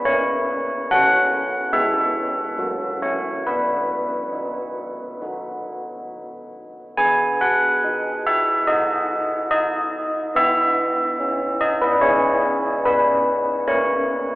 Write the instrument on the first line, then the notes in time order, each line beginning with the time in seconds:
church bells
0.05 A#3 C#5
0.91 C#4 F#4 F#5
1.72 G#3 B3 E4 E5
2.58 F#3 A#3 F#4
3.02 C#5
3.47 B3 B4
4.33 D#4
5.22 D#4 F#4
6.97 B3 G#5
7.41 F#5
7.84 D#4
8.27 E5
8.67 D#4 F#4 D#5
9.51 D#5
10.35 B3 E5
11.20 C#4
11.61 D#5
11.82 B4
12.01 C#4 G#4 C#5
12.85 B4
13.68 A#3 C#5